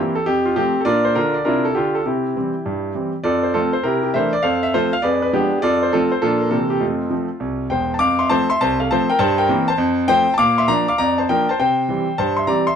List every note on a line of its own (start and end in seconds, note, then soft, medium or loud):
0.00 0.13 E3 soft
0.00 0.14 A#3 soft
0.00 0.14 C4 medium
0.00 0.15 E4 soft
0.00 0.16 G4 medium
0.15 0.27 A4 medium
0.26 0.52 F2 medium
0.26 0.46 G4 medium
0.45 0.57 F4 medium
0.56 0.73 F3 soft
0.56 0.73 A3 soft
0.56 0.80 C4 medium
0.56 0.81 G4 medium
0.81 0.86 A4 medium
0.85 1.10 A#2 medium
0.85 1.11 D4 medium
0.85 1.04 F4 medium
0.85 1.04 A#4 medium
0.85 1.05 D5 medium
1.05 1.16 C5 medium
1.15 1.40 D3 medium
1.15 1.35 D4 medium
1.15 1.34 F4 medium
1.15 1.35 A#4 medium
1.34 1.45 D5 medium
1.45 1.70 C3 medium
1.45 1.64 D4 medium
1.45 1.71 E4 medium
1.45 1.64 F4 medium
1.45 1.65 A#4 medium
1.65 1.76 A4 medium
1.75 1.99 D3 medium
1.75 2.00 F4 medium
1.75 1.95 G4 medium
1.95 2.06 A4 medium
2.06 2.31 C3 soft
2.06 2.35 C4 soft
2.06 3.11 E4 soft
2.06 3.14 G4 medium
2.36 2.52 E3 soft
2.36 2.53 G3 soft
2.36 2.53 C4 soft
2.66 2.91 G2 medium
2.95 3.11 E3 soft
2.95 3.12 G3 soft
2.95 3.12 C4 soft
3.24 3.50 F2 medium
3.24 3.43 F4 medium
3.24 3.43 A4 medium
3.24 3.44 D5 medium
3.43 3.54 C5 medium
3.54 3.71 F3 soft
3.54 3.71 A3 soft
3.54 3.73 C4 medium
3.54 3.73 F4 medium
3.54 3.74 A4 medium
3.73 3.84 C5 medium
3.83 4.09 C3 medium
3.83 4.03 E4 medium
3.83 4.02 G4 medium
3.83 4.03 A#4 medium
4.03 4.14 G4 medium
4.14 4.31 E3 soft
4.14 4.31 A3 soft
4.14 4.32 D4 soft
4.14 4.33 A#4 medium
4.14 4.33 C5 medium
4.14 4.33 E5 medium
4.33 4.44 D5 medium
4.43 4.69 F2 medium
4.43 4.62 A4 medium
4.43 4.62 C5 medium
4.43 4.63 F5 medium
4.63 4.74 E5 medium
4.74 4.90 F3 soft
4.74 4.91 A3 medium
4.74 4.91 C4 soft
4.74 4.92 F4 medium
4.74 4.92 A4 medium
4.74 4.93 C5 medium
4.93 5.03 F5 medium
5.02 5.29 F2 medium
5.02 5.22 G#4 medium
5.02 5.21 B4 medium
5.02 5.22 D5 medium
5.22 5.33 B4 medium
5.33 5.50 F3 soft
5.33 5.50 G#3 soft
5.33 5.56 B3 medium
5.33 5.57 D4 medium
5.33 5.58 G4 medium
5.58 5.63 G#4 soft
5.58 5.82 D5 loud
5.63 5.88 F2 medium
5.63 5.81 F4 medium
5.63 5.81 A4 medium
5.83 5.93 C5 medium
5.93 6.10 F3 soft
5.93 6.10 A3 soft
5.93 6.11 C4 medium
5.93 6.11 F4 medium
5.93 6.12 A4 medium
6.12 6.22 C5 medium
6.22 6.48 A#2 medium
6.22 6.39 F3 soft
6.22 6.39 A#3 soft
6.22 6.41 D4 medium
6.22 6.41 F4 medium
6.22 6.42 A4 medium
6.41 6.52 A#4 soft
6.51 6.77 C3 medium
6.51 6.68 E3 soft
6.51 6.68 A#3 soft
6.51 6.68 C4 soft
6.51 6.71 A4 medium
6.70 6.81 G4 medium
6.80 7.06 F2 medium
6.80 7.09 A3 soft
6.80 7.10 C4 soft
6.80 7.71 F4 soft
7.10 7.27 F3 soft
7.10 7.27 A3 soft
7.10 7.28 C4 soft
7.40 7.66 C2 medium
7.70 7.94 E1 medium
7.70 7.95 E2 medium
7.70 7.94 C5 medium
7.70 7.95 G5 medium
7.94 8.00 A5 medium
7.99 8.26 F2 medium
7.99 8.19 F5 medium
7.99 8.19 D6 loud
8.19 8.30 E5 medium
8.19 8.30 C6 medium
8.30 8.47 F3 soft
8.30 8.47 A3 medium
8.30 8.47 C4 medium
8.30 8.49 C5 medium
8.30 8.50 A5 loud
8.50 8.60 E5 medium
8.50 8.60 C6 medium
8.61 8.86 C2 medium
8.61 8.80 C5 medium
8.61 8.80 A5 loud
8.80 8.90 A4 medium
8.80 8.90 F5 medium
8.91 9.08 F3 medium
8.91 9.08 A3 medium
8.91 9.08 C4 medium
8.91 9.10 C5 medium
8.91 9.10 A5 medium
9.10 9.20 A#4 medium
9.10 9.20 G5 medium
9.19 9.45 G2 medium
9.19 9.38 C5 medium
9.19 9.39 A5 loud
9.38 9.67 A#4 medium
9.38 9.69 G5 medium
9.49 9.66 E3 medium
9.49 9.66 A#3 medium
9.49 9.66 C4 medium
9.68 9.97 C5 medium
9.68 9.98 A5 medium
9.78 10.04 F2 loud
10.08 10.25 F3 medium
10.08 10.25 A3 medium
10.08 10.25 C4 medium
10.08 10.32 C5 medium
10.08 10.33 G5 loud
10.34 10.39 A5 medium
10.38 10.64 A#2 medium
10.38 10.57 F5 medium
10.38 10.58 D6 loud
10.58 10.69 E5 medium
10.58 10.69 C6 medium
10.68 10.85 F3 medium
10.68 10.85 A#3 medium
10.68 10.85 D4 medium
10.68 10.87 D5 medium
10.68 10.88 A#5 loud
10.88 10.99 F5 medium
10.88 10.99 D6 medium
10.98 11.24 F2 medium
10.98 11.17 D5 medium
10.98 11.18 A#5 loud
11.18 11.29 C5 medium
11.18 11.29 A5 medium
11.29 11.46 F3 medium
11.29 11.46 A#3 medium
11.29 11.47 D4 soft
11.29 11.48 A#4 medium
11.29 11.48 G5 medium
11.49 11.59 C5 medium
11.49 11.59 A5 medium
11.59 11.84 C3 medium
11.59 12.15 C5 medium
11.59 12.19 G5 medium
11.89 12.05 E3 soft
11.89 12.06 G3 medium
11.89 12.06 C4 soft
12.18 12.44 G2 medium
12.18 12.37 C5 medium
12.18 12.38 A5 medium
12.37 12.48 E5 medium
12.37 12.48 C6 medium
12.47 12.64 E3 soft
12.47 12.64 G3 medium
12.47 12.65 C4 medium
12.47 12.66 D5 medium
12.47 12.67 A#5 medium
12.67 12.76 E5 medium
12.67 12.76 C6 medium